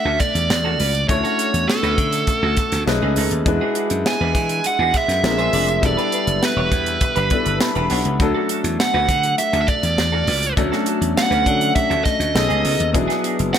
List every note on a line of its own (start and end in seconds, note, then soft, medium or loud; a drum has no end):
0.00 1.04 A3 medium
0.00 1.05 D4 medium
0.00 1.05 F#4 medium
0.00 1.06 D5 medium
0.00 0.21 E5 medium
0.05 0.18 D2 medium
0.05 0.19 C#4 medium
0.05 0.19 F#4 medium
0.05 0.19 A4 medium
0.20 1.08 D5 medium
0.20 muted clean electric guitar stroke soft
0.20 kick medium
0.20 snare soft
0.20 closed hi-hat medium
0.35 0.47 E2 medium
0.35 muted clean electric guitar stroke soft
0.35 closed hi-hat soft
0.50 0.75 E2 medium
0.50 muted clean electric guitar stroke soft
0.50 snare loud
0.64 0.77 C#4 medium
0.64 0.79 F#4 medium
0.64 0.78 A4 medium
0.79 1.04 C#2 medium
0.79 0.90 C#4 medium
0.79 0.90 F#4 medium
0.79 0.90 B4 medium
0.79 open hi-hat medium
0.93 muted clean electric guitar stroke soft
0.93 closed hi-hat medium
1.08 1.22 D2 medium
1.08 2.83 A3 medium
1.08 2.83 C#4 medium
1.08 2.83 D4 medium
1.08 1.16 E4 soft
1.08 1.70 C#5 medium
1.08 2.84 C#5 medium
1.08 muted clean electric guitar stroke soft
1.08 kick loud
1.08 closed hi-hat medium
1.16 2.87 F#4 medium
1.24 1.38 C#4 medium
1.24 1.38 F#4 medium
1.24 1.37 A4 medium
1.24 closed hi-hat soft
1.39 1.49 C#4 medium
1.39 1.50 F#4 soft
1.39 1.50 A4 medium
1.39 closed hi-hat medium
1.53 1.66 E2 medium
1.53 muted clean electric guitar stroke soft
1.53 closed hi-hat medium
1.68 2.83 A4 medium
1.68 muted clean electric guitar stroke soft
1.68 snare loud
1.83 1.95 D2 medium
1.83 1.97 C#4 medium
1.83 1.97 F#4 medium
1.83 1.97 B4 medium
1.83 closed hi-hat soft
1.98 2.23 D3 medium
1.98 muted clean electric guitar stroke soft
1.98 kick medium
1.98 closed hi-hat medium
2.13 muted clean electric guitar stroke soft
2.13 closed hi-hat medium
2.27 muted clean electric guitar stroke soft
2.27 kick medium
2.27 closed hi-hat medium
2.43 2.55 D2 medium
2.43 2.57 C#4 medium
2.43 2.57 F#4 medium
2.43 2.56 A4 medium
2.57 muted clean electric guitar stroke soft
2.57 kick medium
2.57 snare soft
2.57 closed hi-hat medium
2.72 2.84 D2 medium
2.72 muted clean electric guitar stroke soft
2.72 snare soft
2.72 closed hi-hat soft
2.86 2.99 B1 loud
2.86 3.46 A3 medium
2.86 3.46 C#4 medium
2.86 3.46 D#4 medium
2.86 3.46 G#4 medium
2.86 3.46 B4 medium
2.86 muted clean electric guitar stroke soft
2.86 snare loud
3.02 3.14 C#2 medium
3.02 3.13 A3 medium
3.02 3.13 D#4 medium
3.02 3.13 G#4 medium
3.16 3.29 C#2 medium
3.16 3.30 A3 medium
3.16 3.31 D#4 medium
3.16 3.31 A4 medium
3.16 open hi-hat medium
3.31 3.44 D#2 medium
3.31 muted clean electric guitar stroke soft
3.31 closed hi-hat soft
3.46 3.58 E2 medium
3.46 5.20 G#3 medium
3.46 5.20 D4 medium
3.46 5.21 E4 medium
3.46 5.21 F#4 medium
3.46 5.21 B4 medium
3.46 muted clean electric guitar stroke soft
3.46 kick loud
3.46 closed hi-hat medium
3.61 3.75 D4 medium
3.61 3.75 F#4 medium
3.61 3.75 G#4 medium
3.75 3.86 D4 medium
3.75 3.87 F#4 medium
3.75 3.87 G#4 medium
3.75 closed hi-hat medium
3.90 4.03 F#2 medium
3.90 closed hi-hat medium
4.06 4.67 G#5 medium
4.06 muted clean electric guitar stroke soft
4.06 snare loud
4.21 4.33 E2 medium
4.21 4.35 D4 medium
4.21 4.34 F#4 medium
4.21 4.34 B4 medium
4.35 4.60 E3 medium
4.35 muted clean electric guitar stroke soft
4.35 kick medium
4.35 snare soft
4.35 closed hi-hat medium
4.49 muted clean electric guitar stroke soft
4.49 closed hi-hat soft
4.64 4.96 F#5 medium
4.64 muted clean electric guitar stroke soft
4.64 closed hi-hat medium
4.79 4.91 E2 medium
4.79 4.94 D4 medium
4.79 4.94 F#4 medium
4.79 4.93 G#4 medium
4.94 5.87 E5 medium
4.94 muted clean electric guitar stroke soft
4.94 kick medium
4.94 snare soft
4.94 closed hi-hat medium
5.08 5.21 F#2 medium
5.08 muted clean electric guitar stroke soft
5.08 snare soft
5.08 closed hi-hat soft
5.23 5.48 A#1 medium
5.23 5.83 G#3 medium
5.23 5.83 C4 medium
5.23 5.82 D4 medium
5.23 5.83 F4 soft
5.23 5.83 A#4 medium
5.23 muted clean electric guitar stroke soft
5.23 snare loud
5.38 5.50 D4 soft
5.38 5.50 G#4 medium
5.38 5.49 C5 medium
5.38 closed hi-hat soft
5.53 5.78 F1 medium
5.53 5.67 D4 medium
5.53 5.67 G#4 medium
5.53 5.67 D5 medium
5.53 open hi-hat medium
5.68 muted clean electric guitar stroke soft
5.68 closed hi-hat soft
5.82 5.95 E1 medium
5.82 7.27 G3 medium
5.82 7.28 B3 medium
5.82 7.28 D4 medium
5.82 7.28 E4 medium
5.82 7.29 A4 medium
5.82 muted clean electric guitar stroke soft
5.82 kick loud
5.82 closed hi-hat medium
5.86 6.44 D5 medium
5.97 6.11 D4 medium
5.97 6.12 G4 medium
5.97 6.11 B4 medium
5.97 closed hi-hat soft
6.12 6.23 D4 medium
6.12 6.23 G4 medium
6.12 6.24 B4 medium
6.12 closed hi-hat medium
6.27 6.40 F#1 medium
6.27 muted clean electric guitar stroke soft
6.27 closed hi-hat soft
6.42 7.58 B4 medium
6.42 muted clean electric guitar stroke soft
6.42 snare loud
6.56 6.69 E1 medium
6.56 6.71 D4 medium
6.56 6.71 G4 medium
6.56 6.71 C#5 medium
6.72 6.96 E2 medium
6.72 muted clean electric guitar stroke soft
6.72 kick medium
6.72 closed hi-hat medium
6.86 muted clean electric guitar stroke soft
6.86 closed hi-hat soft
7.01 muted clean electric guitar stroke soft
7.01 kick medium
7.01 closed hi-hat medium
7.16 7.29 G1 medium
7.16 7.29 D4 medium
7.16 7.30 G4 medium
7.16 7.30 B4 medium
7.16 closed hi-hat soft
7.30 8.20 G3 soft
7.30 8.20 B3 medium
7.30 8.20 D4 medium
7.30 8.20 E4 soft
7.30 8.21 A4 medium
7.30 muted clean electric guitar stroke soft
7.30 kick medium
7.30 closed hi-hat soft
7.45 7.58 G1 medium
7.45 muted clean electric guitar stroke soft
7.45 closed hi-hat soft
7.60 7.88 B5 medium
7.60 muted clean electric guitar stroke soft
7.60 snare loud
7.75 7.88 E1 medium
7.75 7.87 D4 soft
7.75 7.86 G4 medium
7.75 7.86 B4 medium
7.75 closed hi-hat soft
7.90 8.03 B1 medium
7.90 8.04 D4 medium
7.90 8.04 G4 medium
7.90 8.04 C#5 medium
7.90 8.18 F#5 medium
7.90 open hi-hat medium
8.04 8.18 C#2 medium
8.04 muted clean electric guitar stroke medium
8.04 closed hi-hat soft
8.19 8.32 D2 medium
8.19 10.53 F#3 medium
8.19 10.53 A3 medium
8.19 10.54 D4 medium
8.19 10.54 A4 medium
8.19 muted clean electric guitar stroke soft
8.19 kick loud
8.19 closed hi-hat medium
8.34 8.48 C#4 medium
8.34 8.49 F#4 medium
8.34 8.48 A4 medium
8.49 8.60 C#4 medium
8.49 8.61 F#4 medium
8.49 8.61 A4 medium
8.49 closed hi-hat medium
8.64 8.77 E2 medium
8.64 muted clean electric guitar stroke soft
8.64 closed hi-hat medium
8.80 9.35 F#5 medium
8.80 muted clean electric guitar stroke soft
8.80 snare loud
8.94 9.06 D2 medium
8.94 9.08 C#4 medium
8.94 9.08 F#4 medium
8.94 9.08 B4 medium
9.09 9.34 D3 loud
9.09 kick medium
9.09 snare soft
9.09 closed hi-hat medium
9.23 muted clean electric guitar stroke soft
9.23 closed hi-hat soft
9.38 9.60 E5 medium
9.38 muted clean electric guitar stroke soft
9.38 closed hi-hat medium
9.53 9.66 D2 medium
9.53 9.67 C#4 medium
9.53 9.67 F#4 medium
9.53 9.67 A4 medium
9.53 closed hi-hat soft
9.61 9.68 E5 medium
9.68 10.53 D5 medium
9.68 muted clean electric guitar stroke soft
9.68 kick medium
9.68 closed hi-hat medium
9.83 9.95 E2 medium
9.83 muted clean electric guitar stroke soft
9.83 closed hi-hat soft
9.98 10.23 E2 medium
9.98 muted clean electric guitar stroke soft
9.98 snare loud
10.12 10.24 C#4 medium
10.12 10.23 F#4 medium
10.12 10.23 A4 medium
10.27 10.52 C#2 medium
10.27 10.41 C#4 medium
10.27 10.41 F#4 medium
10.27 10.42 B4 medium
10.27 open hi-hat medium
10.43 muted clean electric guitar stroke soft
10.43 closed hi-hat medium
10.57 10.70 D2 medium
10.57 11.44 F#3 medium
10.57 11.44 A3 medium
10.57 11.45 C#4 medium
10.57 11.45 D4 medium
10.57 11.46 A4 medium
10.57 muted clean electric guitar stroke soft
10.57 kick medium
10.57 closed hi-hat medium
10.72 10.86 C#4 medium
10.72 10.86 F#4 medium
10.72 10.85 A4 medium
10.72 snare soft
10.86 10.98 C#4 medium
10.86 10.98 F#4 medium
10.86 10.98 A4 medium
10.86 closed hi-hat medium
11.01 11.14 E2 medium
11.01 muted clean electric guitar stroke soft
11.01 closed hi-hat soft
11.17 11.75 F#5 medium
11.17 muted clean electric guitar stroke soft
11.17 snare loud
11.31 11.43 D2 medium
11.31 11.45 C#4 medium
11.31 11.45 F#4 medium
11.31 11.45 B4 medium
11.31 closed hi-hat soft
11.46 11.71 D3 medium
11.46 12.35 F#3 medium
11.46 12.35 A3 soft
11.46 12.33 C#4 soft
11.46 12.35 D4 soft
11.46 12.34 A4 medium
11.46 muted clean electric guitar stroke soft
11.46 kick medium
11.46 closed hi-hat medium
11.61 muted clean electric guitar stroke soft
11.61 closed hi-hat soft
11.75 12.03 E5 medium
11.75 muted clean electric guitar stroke soft
11.75 kick medium
11.75 closed hi-hat medium
11.90 12.03 D2 medium
11.90 12.04 C#4 medium
11.90 12.04 F#4 medium
11.90 12.04 A4 medium
11.90 closed hi-hat soft
12.04 12.90 D#5 medium
12.04 muted clean electric guitar stroke soft
12.04 kick medium
12.04 snare soft
12.04 closed hi-hat soft
12.20 12.32 D2 medium
12.20 muted clean electric guitar stroke soft
12.20 closed hi-hat soft
12.34 12.47 B1 loud
12.34 12.92 B3 medium
12.34 12.94 C#4 medium
12.34 12.94 D#4 medium
12.34 12.94 G#4 medium
12.34 12.94 A4 medium
12.34 muted clean electric guitar stroke soft
12.34 snare loud
12.49 12.62 C#2 medium
12.49 12.61 A3 medium
12.49 12.60 D#4 medium
12.49 12.60 G#4 medium
12.49 closed hi-hat soft
12.63 12.77 C#2 medium
12.63 12.78 A3 medium
12.63 12.78 D#4 medium
12.63 12.78 A4 loud
12.63 open hi-hat medium
12.78 12.92 D#2 medium
12.78 muted clean electric guitar stroke soft
12.78 closed hi-hat soft
12.93 13.07 E1 medium
12.93 13.59 F#3 medium
12.93 13.59 B3 medium
12.93 13.59 D4 medium
12.93 13.59 E4 medium
12.93 13.59 G#4 medium
12.93 muted clean electric guitar stroke soft
12.93 kick medium
12.93 closed hi-hat medium
13.08 13.21 D4 medium
13.08 13.22 F#4 medium
13.08 13.22 G#4 medium
13.08 snare soft
13.08 closed hi-hat soft
13.23 13.34 D4 medium
13.23 13.34 F#4 medium
13.23 13.35 G#4 medium
13.23 closed hi-hat medium
13.38 13.52 F#1 medium
13.38 muted clean electric guitar stroke soft
13.38 closed hi-hat soft
13.53 13.59 F#5 loud
13.53 muted clean electric guitar stroke soft
13.53 snare loud